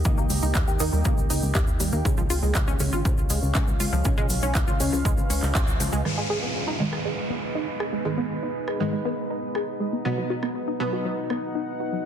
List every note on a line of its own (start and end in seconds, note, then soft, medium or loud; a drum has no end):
0.00 2.01 A#3 medium
0.00 2.01 D#4 medium
0.00 2.01 G4 medium
0.00 2.01 D#5 medium
0.00 2.01 G5 medium
0.04 0.15 C#2 loud
0.04 0.77 D#3 medium
0.04 0.77 A#3 medium
0.04 0.77 D#4 loud
0.04 kick loud
0.04 shaker soft
0.18 0.28 C#2 medium
0.18 0.26 A#3 loud
0.18 shaker soft
0.30 0.40 C#2 medium
0.30 open hi-hat loud
0.30 shaker medium
0.42 0.53 C#2 medium
0.42 0.55 D#4 medium
0.42 shaker soft
0.55 0.65 D#2 loud
0.55 kick loud
0.55 clap loud
0.55 shaker soft
0.68 0.78 D#2 medium
0.68 0.80 G4 medium
0.68 shaker soft
0.80 0.91 D#2 medium
0.80 2.02 D#3 loud
0.80 2.02 A#3 medium
0.80 2.02 D#4 loud
0.80 open hi-hat medium
0.80 shaker medium
0.93 1.03 D#2 medium
0.93 1.01 G3 medium
0.93 shaker soft
1.05 1.15 C#2 loud
1.05 1.13 A#3 loud
1.05 kick loud
1.05 shaker medium
1.18 1.28 C#2 medium
1.18 shaker soft
1.30 1.40 C#2 medium
1.30 1.42 D#4 medium
1.30 open hi-hat loud
1.30 shaker medium
1.42 1.53 C#2 medium
1.42 shaker soft
1.55 1.66 D#2 loud
1.55 1.63 G4 medium
1.55 kick loud
1.55 clap loud
1.55 shaker soft
1.67 1.78 D#2 medium
1.67 shaker soft
1.80 1.90 D#2 medium
1.80 1.92 G3 medium
1.80 open hi-hat medium
1.80 shaker loud
1.92 2.03 D#2 medium
1.92 2.01 A#3 medium
1.92 shaker soft
2.05 2.15 C#2 loud
2.05 2.77 C#3 medium
2.05 2.77 G#3 medium
2.05 6.01 G#3 medium
2.05 2.77 C#4 loud
2.05 6.01 C#4 medium
2.05 6.01 F4 medium
2.05 4.03 C#5 medium
2.05 6.01 F5 medium
2.05 kick loud
2.05 shaker soft
2.17 2.28 C#2 medium
2.17 2.23 F3 loud
2.17 shaker soft
2.30 2.40 C#2 medium
2.30 2.39 F4 loud
2.30 open hi-hat loud
2.30 shaker medium
2.43 2.53 C#2 medium
2.43 2.55 G#3 medium
2.43 shaker soft
2.55 2.65 C#2 loud
2.55 kick loud
2.55 clap loud
2.55 shaker soft
2.68 2.78 C#2 medium
2.68 2.76 C#4 loud
2.68 shaker soft
2.80 2.90 C#2 medium
2.80 4.02 C#3 loud
2.80 4.02 G#3 medium
2.80 4.02 C#4 loud
2.80 open hi-hat medium
2.80 shaker medium
2.92 3.03 G#1 medium
2.92 3.01 F4 medium
2.92 shaker soft
3.05 3.15 C#2 loud
3.05 3.13 F3 medium
3.05 kick loud
3.05 shaker soft
3.18 3.28 C#2 medium
3.18 shaker soft
3.30 3.40 C#2 medium
3.30 3.38 G#3 medium
3.30 open hi-hat loud
3.30 shaker medium
3.43 3.53 C#2 medium
3.43 shaker soft
3.55 3.65 C#2 loud
3.55 3.67 C#4 medium
3.55 kick loud
3.55 clap loud
3.55 shaker soft
3.68 3.78 C#2 medium
3.68 shaker soft
3.80 3.90 C#2 medium
3.80 3.85 F4 medium
3.80 open hi-hat medium
3.80 shaker medium
3.93 4.03 C#2 medium
3.93 4.04 F3 medium
3.93 shaker soft
4.05 4.15 B1 loud
4.05 4.77 C#3 loud
4.05 4.77 G#3 medium
4.05 4.77 C#4 loud
4.05 6.03 B4 medium
4.05 kick loud
4.05 shaker soft
4.17 4.28 B1 medium
4.17 4.26 G#3 loud
4.17 shaker soft
4.30 4.40 B1 medium
4.30 open hi-hat loud
4.30 shaker medium
4.42 4.53 B1 medium
4.42 4.55 C#4 medium
4.42 shaker soft
4.55 4.65 C#2 loud
4.55 kick loud
4.55 clap loud
4.55 shaker medium
4.68 4.78 C#2 medium
4.68 4.79 F4 medium
4.68 shaker soft
4.80 4.90 C#2 medium
4.80 6.02 C#3 medium
4.80 6.02 G#3 medium
4.80 6.02 C#4 loud
4.80 open hi-hat medium
4.80 shaker medium
4.93 5.03 C#2 medium
4.93 5.01 F3 medium
4.93 shaker soft
5.05 5.15 C#2 loud
5.05 5.13 G#3 loud
5.05 kick loud
5.05 shaker medium
5.18 5.28 C#2 medium
5.18 shaker soft
5.30 5.40 C#2 medium
5.30 5.42 C#4 medium
5.30 open hi-hat loud
5.30 shaker medium
5.43 5.53 C#2 medium
5.43 clap soft
5.43 shaker soft
5.55 5.65 C#2 loud
5.55 5.63 F4 medium
5.55 kick loud
5.55 clap loud
5.55 shaker medium
5.68 5.78 C#2 medium
5.68 shaker soft
5.80 5.90 C#2 loud
5.80 5.92 F3 medium
5.80 open hi-hat medium
5.80 shaker medium
5.92 6.03 C#2 medium
5.92 6.01 G#3 medium
5.92 shaker soft
6.05 6.77 G#2 medium
6.05 6.77 D#3 medium
6.05 6.77 G#3 loud
6.05 10.01 G#3 medium
6.05 12.05 B3 medium
6.05 12.05 D#4 medium
6.05 10.01 B4 medium
6.05 12.05 D#5 medium
6.05 cross-stick soft
6.05 downlifter medium
6.18 6.23 G#3 medium
6.30 6.38 G#4 loud
6.43 6.54 B3 medium
6.68 6.76 D#4 medium
6.80 8.02 G#2 medium
6.80 8.02 D#3 medium
6.80 8.02 G#3 loud
6.93 7.01 G#4 medium
6.93 cross-stick medium
7.05 7.14 G#3 medium
7.30 7.38 B3 medium
7.55 7.67 D#4 medium
7.80 7.85 G#4 medium
7.80 cross-stick soft
7.93 8.05 G#3 medium
8.05 8.77 G#2 medium
8.05 8.77 D#3 medium
8.05 8.77 G#3 loud
8.18 8.26 B3 medium
8.43 8.55 D#4 medium
8.68 8.80 G#4 medium
8.68 cross-stick soft
8.80 10.02 G#2 medium
8.80 10.02 D#3 medium
8.80 10.02 G#3 loud
8.93 9.01 G#3 medium
9.05 9.14 B3 loud
9.30 9.42 D#4 medium
9.55 9.64 G#4 medium
9.55 cross-stick soft
9.80 9.92 G#3 medium
9.93 10.01 B3 medium
10.05 10.77 B2 medium
10.05 10.77 F#3 medium
10.05 10.77 B3 loud
10.05 12.05 F#4 medium
10.05 12.05 F#5 medium
10.18 10.23 F#3 medium
10.30 10.39 F#4 loud
10.43 10.55 B3 medium
10.43 cross-stick soft
10.68 10.76 D#4 loud
10.80 12.02 B2 medium
10.80 12.02 F#3 medium
10.80 12.02 B3 loud
10.93 11.01 F#4 medium
11.05 11.14 F#3 medium
11.30 11.39 B3 medium
11.30 cross-stick soft
11.55 11.67 D#4 medium
11.80 11.85 F#4 medium
11.93 12.05 F#3 medium